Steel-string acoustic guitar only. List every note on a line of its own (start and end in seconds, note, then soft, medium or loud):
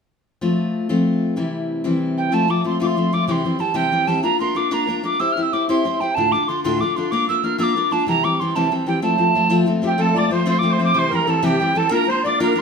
0.41 0.89 F3 medium
0.41 0.89 A3 medium
0.41 0.89 C4 medium
0.41 0.88 F4 medium
0.89 1.36 F3 medium
0.89 1.37 A3 medium
0.89 1.37 C4 medium
0.89 1.37 F4 medium
1.36 1.84 C3 medium
1.36 1.85 E3 medium
1.36 1.83 G3 medium
1.36 1.85 C4 medium
1.36 1.83 E4 medium
1.84 2.33 C3 medium
1.84 2.31 E3 medium
1.84 2.32 G3 medium
1.84 2.31 C4 medium
1.84 2.32 E4 medium
2.32 2.47 F3 medium
2.32 2.47 A3 medium
2.32 2.48 C4 medium
2.32 2.49 F4 medium
2.48 2.63 F3 medium
2.48 2.63 A3 soft
2.48 2.64 C4 medium
2.48 2.64 F4 medium
2.64 2.79 F3 medium
2.64 2.79 A3 medium
2.64 2.80 C4 soft
2.64 2.80 F4 medium
2.80 2.95 F3 medium
2.80 2.96 A3 medium
2.80 2.97 C4 medium
2.80 2.97 F4 medium
2.97 3.11 F3 medium
2.97 3.12 A3 medium
2.97 3.13 C4 medium
2.97 3.13 F4 medium
3.13 3.28 F3 medium
3.13 3.28 A3 medium
3.13 3.28 C4 medium
3.13 3.29 F4 medium
3.28 3.45 C3 medium
3.28 3.43 E3 medium
3.28 3.44 G3 medium
3.28 3.44 C4 medium
3.28 3.45 G4 medium
3.44 3.58 E3 soft
3.44 3.58 G3 soft
3.44 3.59 C4 medium
3.44 3.59 G4 medium
3.59 3.73 E3 soft
3.59 3.73 G3 medium
3.59 3.74 C4 medium
3.59 3.74 G4 medium
3.74 3.92 C3 medium
3.74 3.90 E3 medium
3.74 3.91 G3 medium
3.74 3.92 C4 medium
3.74 3.92 G4 medium
3.92 4.06 E3 soft
3.92 4.07 G3 medium
3.92 4.07 C4 medium
3.92 4.08 G4 medium
4.07 4.22 E3 soft
4.07 4.23 G3 medium
4.07 4.23 C4 medium
4.07 4.24 G4 medium
4.23 4.38 A#3 medium
4.23 4.39 D4 medium
4.23 4.39 F4 medium
4.23 4.40 A#4 medium
4.39 4.53 A#3 medium
4.39 4.55 D4 soft
4.39 4.55 F4 medium
4.39 4.56 A#4 medium
4.55 4.70 A#3 medium
4.55 4.70 D4 medium
4.55 4.70 F4 medium
4.55 4.71 A#4 medium
4.71 4.86 A#3 medium
4.71 4.87 D4 medium
4.71 4.88 F4 medium
4.71 4.89 A#4 medium
4.87 5.02 A#3 medium
4.87 5.03 D4 medium
4.87 5.03 F4 medium
4.87 5.04 A#4 medium
5.03 5.19 A#3 medium
5.03 5.19 D4 medium
5.03 5.20 F4 medium
5.03 5.20 A#4 medium
5.19 5.36 C4 medium
5.19 5.36 E4 medium
5.19 5.37 G4 medium
5.19 5.37 C5 medium
5.37 5.52 C4 medium
5.37 5.52 E4 medium
5.37 5.53 G4 medium
5.37 5.53 C5 medium
5.53 5.68 C4 medium
5.53 5.68 E4 medium
5.53 5.68 G4 medium
5.53 5.69 C5 medium
5.69 5.84 C4 medium
5.69 5.85 E4 medium
5.69 5.85 G4 medium
5.69 5.86 C5 medium
5.85 5.99 C4 medium
5.85 6.00 E4 medium
5.85 6.01 G4 medium
5.85 6.01 C5 medium
6.01 6.16 C4 medium
6.01 6.16 E4 medium
6.01 6.16 G4 medium
6.01 6.17 C5 medium
6.17 6.33 D2 medium
6.17 6.33 A2 medium
6.17 6.32 D3 medium
6.17 6.33 D4 medium
6.17 6.33 F4 medium
6.17 6.34 A4 medium
6.33 6.48 D3 soft
6.33 6.48 D4 medium
6.33 6.49 F4 medium
6.33 6.49 A4 medium
6.49 6.64 D3 medium
6.49 6.64 D4 medium
6.49 6.64 F4 medium
6.49 6.65 A4 medium
6.64 6.81 D2 medium
6.64 6.81 A2 medium
6.64 6.80 D3 medium
6.64 6.81 D4 medium
6.64 6.81 F4 medium
6.64 6.82 A4 medium
6.82 6.95 D3 medium
6.82 6.96 D4 medium
6.82 6.97 F4 medium
6.82 6.98 A4 medium
6.96 7.11 D3 medium
6.96 7.12 D4 medium
6.96 7.12 F4 medium
6.96 7.13 A4 medium
7.12 7.27 A#3 medium
7.12 7.28 D4 medium
7.12 7.29 F4 medium
7.12 7.29 A#4 medium
7.29 7.42 A#3 medium
7.29 7.43 D4 medium
7.29 7.43 F4 medium
7.29 7.44 A#4 medium
7.43 7.57 A#3 soft
7.43 7.58 D4 medium
7.43 7.58 F4 medium
7.43 7.59 A#4 medium
7.58 7.75 A#3 medium
7.58 7.75 D4 medium
7.58 7.76 F4 medium
7.58 7.77 A#4 medium
7.76 7.90 A#3 medium
7.76 7.91 D4 medium
7.76 7.91 F4 medium
7.76 7.92 A#4 medium
7.91 8.07 A#3 medium
7.91 8.08 D4 medium
7.91 8.07 F4 medium
7.91 8.08 A#4 medium
8.07 8.24 C3 medium
8.07 8.23 E3 medium
8.07 8.23 G3 medium
8.07 8.24 C4 medium
8.07 8.24 G4 medium
8.24 8.39 E3 soft
8.24 8.40 G3 medium
8.24 8.40 C4 soft
8.24 8.40 G4 medium
8.41 8.55 E3 medium
8.41 8.55 G3 medium
8.41 8.55 C4 medium
8.41 8.56 G4 soft
8.55 8.72 C3 medium
8.55 8.70 E3 medium
8.55 8.70 G3 medium
8.55 8.71 C4 medium
8.55 8.71 G4 medium
8.71 8.85 E3 medium
8.71 8.86 G3 medium
8.71 8.87 C4 medium
8.71 8.87 G4 medium
8.86 9.02 E3 medium
8.86 9.02 G3 medium
8.86 9.01 C4 medium
8.86 9.03 G4 medium
9.02 9.16 F3 medium
9.02 9.18 A3 medium
9.02 9.17 C4 medium
9.02 9.19 F4 medium
9.18 9.34 F3 soft
9.18 9.35 A3 medium
9.18 9.34 C4 soft
9.18 9.35 F4 medium
9.35 9.48 F3 soft
9.35 9.49 A3 medium
9.35 9.49 C4 medium
9.35 9.50 F4 medium
9.49 9.65 F3 medium
9.49 9.66 A3 medium
9.49 9.66 C4 medium
9.49 9.67 F4 medium
9.66 9.81 F3 medium
9.66 9.83 A3 medium
9.66 9.82 C4 medium
9.66 9.83 F4 medium
9.82 9.97 F3 medium
9.82 9.97 A3 medium
9.82 9.97 C4 medium
9.82 9.98 F4 medium
9.98 10.14 F3 medium
9.98 10.16 A3 medium
9.98 10.15 C4 medium
9.98 10.16 F4 medium
10.15 10.29 F3 medium
10.15 10.30 A3 medium
10.15 10.30 C4 medium
10.15 10.31 F4 medium
10.30 10.44 F3 medium
10.30 10.46 A3 medium
10.30 10.45 C4 medium
10.30 10.46 F4 medium
10.46 10.61 F3 medium
10.46 10.62 A3 medium
10.46 10.62 C4 medium
10.46 10.63 F4 medium
10.62 10.78 F3 medium
10.62 10.79 A3 medium
10.62 10.78 C4 medium
10.62 10.79 F4 medium
10.79 10.94 F3 medium
10.79 10.94 A3 medium
10.79 10.94 C4 medium
10.79 10.95 F4 medium
10.94 11.11 C3 medium
10.94 11.10 E3 medium
10.94 11.11 G3 medium
10.94 11.12 C4 medium
10.94 11.12 G4 medium
11.11 11.26 E3 medium
11.11 11.27 G3 medium
11.11 11.27 C4 medium
11.11 11.28 G4 medium
11.27 11.42 E3 medium
11.27 11.42 G3 medium
11.27 11.42 C4 medium
11.27 11.42 G4 medium
11.42 11.59 C3 medium
11.42 11.58 E3 medium
11.42 11.60 G3 medium
11.42 11.60 C4 medium
11.42 11.60 G4 medium
11.60 11.74 E3 medium
11.60 11.75 G3 medium
11.60 11.75 C4 medium
11.60 11.76 G4 medium
11.75 11.90 E3 medium
11.75 11.91 G3 medium
11.75 11.91 C4 medium
11.75 11.91 G4 medium
11.91 12.07 A#3 medium
11.91 12.07 D4 medium
11.91 12.08 F4 medium
11.91 12.08 A#4 medium
12.08 12.23 A#3 soft
12.08 12.23 D4 medium
12.08 12.24 F4 medium
12.08 12.24 A#4 medium
12.25 12.39 A#3 medium
12.25 12.39 D4 medium
12.25 12.39 F4 medium
12.25 12.40 A#4 medium
12.40 12.54 A#3 medium
12.40 12.54 D4 medium
12.40 12.56 F4 medium
12.40 12.56 A#4 medium
12.56 12.62 A#3 medium
12.56 12.62 D4 medium
12.56 12.62 F4 medium
12.56 12.62 A#4 medium